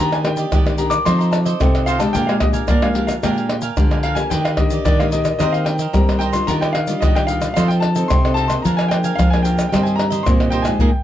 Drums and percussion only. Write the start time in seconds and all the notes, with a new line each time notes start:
0.12 pandeiro, tamborim, shaker
0.25 pandeiro, tamborim
0.37 pandeiro, shaker
0.52 pandeiro, tamborim, shaker, surdo
0.67 pandeiro, tamborim, shaker
0.78 pandeiro, shaker
0.91 pandeiro, tamborim, shaker
1.06 pandeiro, tamborim, shaker, surdo
1.21 pandeiro, shaker
1.33 pandeiro, tamborim, shaker
1.46 pandeiro, shaker
1.61 pandeiro, tamborim, shaker, surdo
1.75 pandeiro, tamborim, shaker
1.87 pandeiro, shaker
2.00 pandeiro, tamborim, shaker
2.15 pandeiro, shaker, surdo
2.29 pandeiro, tamborim, shaker
2.40 pandeiro, tamborim, surdo
2.54 pandeiro, shaker
2.68 pandeiro, tamborim, shaker, surdo
2.82 pandeiro, tamborim, shaker
2.95 pandeiro
3.08 pandeiro, tamborim, shaker
3.23 pandeiro, tamborim, shaker, surdo
3.38 pandeiro, shaker
3.49 pandeiro, tamborim
3.62 pandeiro, shaker
3.77 pandeiro, tamborim, shaker, surdo
3.91 pandeiro, tamborim, shaker
4.03 pandeiro
4.17 pandeiro, tamborim, shaker
4.31 pandeiro, shaker, surdo
4.45 pandeiro, tamborim, shaker
4.57 pandeiro, tamborim, surdo
4.70 pandeiro, shaker
4.85 pandeiro, tamborim, shaker, surdo
5.00 pandeiro, tamborim, shaker
5.12 pandeiro, shaker
5.25 pandeiro, tamborim, shaker
5.40 pandeiro, tamborim, shaker, surdo
5.54 pandeiro, shaker
5.66 pandeiro, tamborim
5.79 pandeiro, shaker
5.94 pandeiro, tamborim, shaker, surdo
6.09 pandeiro, tamborim, shaker
6.21 pandeiro
6.33 pandeiro, tamborim, shaker
6.48 pandeiro, shaker, surdo
6.62 pandeiro, tamborim, shaker
6.75 pandeiro, tamborim
6.87 pandeiro, shaker
7.02 pandeiro, tamborim, shaker, surdo
7.16 pandeiro, tamborim, shaker
7.28 pandeiro, shaker
7.42 pandeiro, tamborim, shaker
7.57 pandeiro, tamborim, shaker, surdo
7.70 pandeiro, shaker
7.82 pandeiro, tamborim
7.96 pandeiro, shaker
8.10 pandeiro, tamborim, shaker, surdo
8.25 pandeiro, tamborim, shaker
8.37 pandeiro
8.50 pandeiro, tamborim, shaker
8.65 pandeiro, shaker, surdo
8.79 pandeiro, tamborim, shaker
8.91 pandeiro, tamborim
9.04 pandeiro, shaker
9.19 pandeiro, tamborim, shaker, surdo
9.33 pandeiro, tamborim, shaker
9.45 pandeiro, shaker
9.59 pandeiro, tamborim, shaker
9.74 pandeiro, tamborim, shaker, surdo
9.87 pandeiro, shaker
9.99 pandeiro, tamborim
10.12 pandeiro, shaker
10.26 pandeiro, tamborim, shaker, surdo
10.40 pandeiro, tamborim, shaker
10.52 pandeiro
10.65 pandeiro, tamborim, shaker
10.79 surdo